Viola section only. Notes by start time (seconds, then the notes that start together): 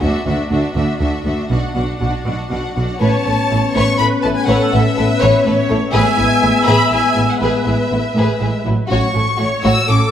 0.02 D4
0.27 D4
0.51 D4
0.75 D4
1.00 D4
1.26 D4
1.50 D4
1.75 D4
2.00 D4
2.26 D4
2.51 D4
2.77 D4
3.01 C#5
4.00 B4
4.48 A4
4.96 B4
5.45 C#5
5.94 E5
7.42 B4
9.40 C#5
9.88 A4